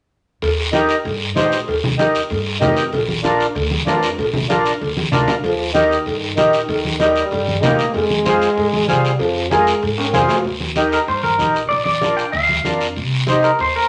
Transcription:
0.42 D#2, cowbell, high conga, long guiro
0.73 D#4 G4 A#4, cowbell, high conga, short guiro
0.89 short guiro
1.04 G2, cowbell, high conga, long guiro
1.36 A#1 D#4 G4 C5, cowbell, high conga, low timbale, short guiro
1.52 short guiro
1.68 D#2, cowbell, high conga, long guiro
1.84 high conga, low conga
1.98 D#4 G4 A#4, cowbell, high conga, short guiro
2.15 short guiro
2.30 G2, cowbell, high conga, long guiro
2.61 F2 D#4 G4 A#4, cowbell, high conga, low conga, low timbale, short guiro
2.77 short guiro
2.93 A#1, cowbell, high conga, long guiro
3.08 high conga
3.23 D4 F4 A#4, cowbell, high conga, short guiro
3.40 short guiro
3.55 D2, cowbell, high conga, long guiro
3.71 high conga
3.87 F2 D4 F4 A#4, cowbell, high conga, low timbale, short guiro
4.03 short guiro
4.18 A#1, cowbell, high conga, long guiro
4.33 high conga, low conga
4.50 D4 F4 A#4, cowbell, high conga, short guiro
4.66 short guiro
4.81 D2, cowbell, high conga, long guiro
4.97 high conga
5.12 D2 D4 F4 A#4, cowbell, low conga, short guiro
5.28 low conga, short guiro
5.43 D#2 F3, cowbell, high conga, long guiro
5.74 D#3 D#4 G4 A#4, cowbell, high conga, short guiro
5.91 short guiro
6.06 G2, cowbell, high conga, long guiro
6.37 A#1 D#3 D#4 G4 A#4, cowbell, high conga, short guiro
6.53 short guiro
6.68 D#2, cowbell, high conga, long guiro
6.85 high conga
7.00 G3 D#4 G4 A#4, cowbell, high conga, short guiro
7.16 G3, short guiro
7.31 G2, cowbell, high conga, long guiro
7.48 high conga
7.62 A#1 A#3 D#4 G4 A#4, cowbell, high conga, low conga, low timbale, short guiro
7.79 short guiro
7.94 F2 G#3, cowbell, high conga, long guiro
8.10 high conga
8.26 F4 G#4 C5, cowbell, high conga, short guiro
8.42 short guiro
8.57 G#2, cowbell, high conga, long guiro
8.73 high conga
8.88 C2 G3 F4 G#4 C5, cowbell, high conga, short guiro
9.05 short guiro
9.19 F2 F3, cowbell, high conga, long guiro
9.51 G#3 F4 G#4 A#4, cowbell, high conga, short guiro
9.67 short guiro
9.83 G#2, cowbell, high conga, long guiro
9.98 high timbale
10.14 F2 G3 F4 G#4 C5, cowbell, high conga, low conga, short guiro
10.29 F3, low timbale, short guiro
10.44 D#2, high conga, long guiro
10.60 high conga
10.76 D#4 G4 A#4, high conga, short guiro
10.92 A#4, short guiro
11.08 G2 C5, high conga, long guiro
11.23 A#4, high conga
11.39 A#1 D#4 G4 A#4, high conga, short guiro
11.55 short guiro
11.69 A#1 D5, high conga, long guiro
11.84 D5, high conga
12.01 D4 F4 A#4, high conga, short guiro
12.17 G5, short guiro
12.32 D2 F5, high conga, long guiro
12.49 high conga
12.65 F2 D4 F4 A#4, high conga, short guiro
12.81 short guiro
12.96 C2, high conga, long guiro
13.27 D#4 G4 C5, high conga, short guiro
13.43 A#4, short guiro
13.59 D#2 C5, high conga, long guiro
13.76 A#4

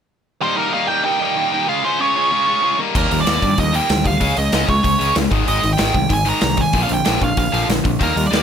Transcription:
0.41 D#3 G3 A#3 D#4 C5
0.57 D#3 G3 A#3 D#4 A#4
0.73 D#3 G3 A#3 D#4 F5
0.87 D#3 G3 A#3 D#4 G5
1.05 D#3 G3 A#3 D#4 G5
1.20 D#3 G3 A#3 D#4
1.36 D#3 G3 A#3 D#4
1.52 D#3 G3 A#3 D#4
1.68 C#3 G#3 C#4 F4 F5
1.83 C#3 G#3 C#4 F4 C5
1.99 C#3 G#3 C#4 F4 C#5
2.16 C#3 G#3 C#4 F4
2.32 C#3 G#3 C#4 F4
2.47 C#3 G#3 C#4 F4
2.63 C#3 G#3 C#4 F4
2.79 D#3 G3 A#3 D#4
2.94 D#2 D#3 G3 A#3 A#4, kick, crash
3.11 D#2 D#3 G3, open hi-hat
3.20 D5
3.27 D#2 D#3 G3 A#3, snare, open hi-hat
3.42 G2 D#3 G3, kick, open hi-hat
3.58 D#2 D#3 G3 D#5, kick, open hi-hat
3.73 D#3 G3 A#3 G5, open hi-hat
3.89 D2 D#3 G3, snare, open hi-hat
4.04 D#3 G3 F5, kick, open hi-hat
4.20 C#2 C#3 G#3 C#4, kick, open hi-hat
4.36 C#2 C#3 G#3 D#5, open hi-hat
4.52 C#2 C#3 G#3 C#4, snare, open hi-hat
4.68 C#2 C#3 G#3 C#5, kick, open hi-hat
4.83 C#2 C#3 G#3 C#5, kick, open hi-hat
4.99 C#2 C#3 G#3 C#4, open hi-hat
5.15 C#2 C#3 G#3, snare, open hi-hat
5.31 G#1 G#2 D#3 G#3, kick, open hi-hat
5.46 G#1 G#2 D#3 G#3 D#5, open hi-hat
5.62 G#1 G#2 D#3, open hi-hat
5.73 G5
5.77 G#1 G#2 D#3 G#3, snare, open hi-hat
5.94 C2 G#2 D#3, kick, open hi-hat
6.09 G#1 G#2 D#3, kick, open hi-hat
6.13 G#5
6.25 G#2 D#3 G#3 A#5, open hi-hat
6.41 C2 G#2 D#3, snare, open hi-hat
6.57 G#2 D#3 G#5, kick, open hi-hat
6.73 A#1 A#2 D3 F3, kick, open hi-hat
6.83 F5
6.89 A#1 A#2 D3, open hi-hat
6.94 G5
7.05 A#1 A#2 D3 F3, snare, open hi-hat
7.21 A#1 A#2 D3 F5, kick, open hi-hat
7.37 A#1 A#2 D3 F5, kick, open hi-hat
7.52 A#1 A#2 D3 F3, open hi-hat
7.67 A#1 A#2 D3, snare, open hi-hat
7.84 A#1 A#2 D3, kick, open hi-hat
7.99 D#2 D#3 G3 A#3 A#4, kick, open hi-hat
8.16 D#2 D#3 G3, open hi-hat
8.26 D5
8.31 D#2 D#3 G3 A#3, snare, open hi-hat

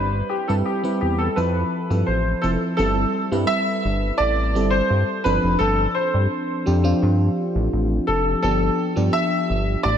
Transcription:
Already playing: G1 G3 C4 E4 B4
0.29 G4
0.48 G2 G3 C4 E4 A4 B4
0.66 G4
0.83 G3 C4 E4 B4
1.01 E2 G4
1.18 A4
1.36 F2 F3 C4 E4 A4 B4
1.90 G2 F3 C4 E4 A4
2.07 A1 C5
2.42 F1 F3 C4 E4 A4
2.77 G1 G3 C4 E4 A4
3.32 G2 G3 C4 E4 B4
3.47 E5
3.85 G1
4.18 A1 D5
4.55 G1 G3 C4 E4 A4
4.70 C5
4.90 G2
5.24 G1 F3 C4 D4 A4 B4
5.43 F1
5.59 G1 A4
5.95 C5
6.14 G2
6.66 F2 F3 C4 D4 G4
6.84 F3 C4 D4 F4
7.03 G2
7.55 A1
7.73 A1
8.07 F1 A4
8.43 G1 F3 B3 D4 G4 A4
8.96 G2 F3 B3 D4 G4
9.13 E5
9.50 G1
9.83 A1 D5

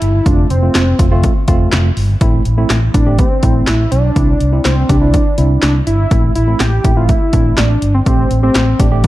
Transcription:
Already playing: E4
0.02 G1, closed hi-hat
0.26 F1 A3 C4 D4 F4, kick, closed hi-hat
0.50 F1 C4, closed hi-hat
0.62 A3 C4 F4
0.75 F1, snare, clap, closed hi-hat
0.99 F1 A3 C4 F4, kick, closed hi-hat
1.11 A3 C4 F4
1.23 kick, closed hi-hat
1.48 F1 A3 C4 F4, kick, closed hi-hat
1.72 F1, snare, clap, closed hi-hat
1.97 G1, open hi-hat
2.21 A1 A3 C4 E4, kick, closed hi-hat
2.45 A1, closed hi-hat
2.58 A3 C4 E4
2.70 A1, snare, clap, closed hi-hat
2.94 A1 A3 C4 D4 E4, kick, closed hi-hat
3.06 A3 C4 G4
3.19 C4, kick, closed hi-hat
3.43 A1 A3 C4 E4, kick, closed hi-hat
3.67 A1 E4, snare, clap, closed hi-hat
3.92 B1 D4, closed hi-hat
4.16 C2 C4 D4 E4, kick, closed hi-hat
4.40 C2, closed hi-hat
4.53 C4 D4 E4
4.65 C2 C4, snare, clap, closed hi-hat
4.89 C2 C4 D4 G4, kick, closed hi-hat
5.02 C4 D4 E4
5.14 kick, closed hi-hat
5.38 C2 C4 D4 E4, closed hi-hat
5.62 C2 D4, snare, clap, closed hi-hat
5.87 G1 E4, closed hi-hat
6.11 A1 A3 C4 E4, kick, closed hi-hat
6.36 A1 E4, closed hi-hat
6.48 A3 C4 E4
6.60 A1 G4, snare, clap, closed hi-hat
6.84 A1 A3 C4 E4, kick, closed hi-hat
6.97 A3 C4 E4 F4
7.09 E4, kick, closed hi-hat
7.33 A1 A3 C4 D4, kick, closed hi-hat
7.58 A1 D4, snare, clap, closed hi-hat
7.82 G1, closed hi-hat
7.94 C4
8.06 A1 A3 C4 G4, kick, closed hi-hat
8.31 A1, closed hi-hat
8.43 A3 C4 G4
8.55 A1, snare, clap, closed hi-hat
8.79 A1 A3 C4 D4 G4, kick, closed hi-hat
8.92 A3 C4 G4
9.04 closed hi-hat

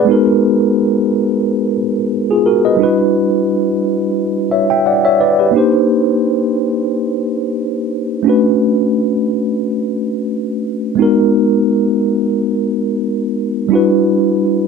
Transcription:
Already playing: G#4 B4
0.05 G#3 B3 D#4
0.10 F#4 A#4
2.31 F4 G#4
2.46 F#4 A#4
2.65 B4 D#5
2.77 G3 D4 E4
2.82 F#4 B4
4.51 C#5 E5
4.70 E5 G5
4.86 D5 F#5
5.05 C#5 E5
5.20 B4 D5
5.39 G4 B4
5.51 A#3 D4 D#4
5.56 G4 C5
8.23 A3 C#4 D4
8.28 F#4 B4
10.95 G#3 B3 D#4
11.00 F#4 A#4
13.69 G3 D4 E4
13.74 F#4 B4

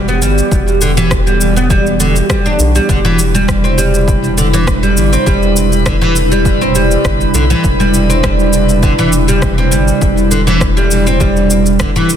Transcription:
Already playing: E1 E3 B3 F#4 G4
0.08 B3, shaker
0.22 G1 G3, shaker
0.38 shaker
0.52 E1, kick, shaker
0.68 shaker
0.81 D3, shaker
0.97 E3, shaker
1.11 kick, cross-stick, shaker
1.27 G3, shaker
1.41 shaker
1.56 B3, shaker
1.70 G3, kick, shaker
1.86 shaker
2.00 D3, shaker
2.16 shaker
2.30 G3, kick, cross-stick, shaker
2.46 D4, shaker
2.59 B1, shaker
2.75 G3, shaker
2.89 E1 C3 D3 G3 D4 E4 B4 B5, kick, shaker
3.05 E3, shaker
3.19 shaker
3.34 G3, shaker
3.48 kick, cross-stick, shaker
3.64 C4, shaker
3.78 G3, shaker
3.94 shaker
4.08 kick, shaker
4.24 shaker
4.38 D3, shaker
4.53 E3, shaker
4.67 kick, cross-stick, shaker
4.83 G3, shaker
4.97 G1, shaker
5.13 C4, shaker
5.27 E1 G3, kick, shaker
5.43 shaker
5.56 shaker
5.72 shaker
5.86 D3, kick, cross-stick, shaker
6.01 E3, shaker
6.16 shaker
6.32 G3, shaker
6.45 kick, shaker
6.61 C4, shaker
6.75 G3, shaker
6.91 shaker
7.05 G1, kick, cross-stick, shaker
7.21 shaker
7.34 B1 D3, shaker
7.50 E3, shaker
7.64 E1, kick, shaker
7.80 G3, shaker
7.94 shaker
8.10 C4, shaker
8.23 G3, kick, cross-stick, shaker
8.39 shaker
8.53 shaker
8.69 shaker
8.83 D3, kick, shaker
8.99 E3, shaker
9.12 shaker
9.28 G3, shaker
9.42 kick, cross-stick, shaker
9.58 C4, shaker
9.71 G1 G3, shaker
9.88 shaker
10.02 E1, kick, shaker
10.18 shaker
10.31 D3, shaker
10.47 E3, shaker
10.61 kick, cross-stick, shaker
10.77 G3, shaker
10.91 shaker
11.07 C4, shaker
11.20 E1 G3, kick, shaker
11.37 shaker
11.50 shaker
11.66 shaker
11.80 D3, kick, cross-stick, shaker
11.96 E3, shaker
12.10 shaker

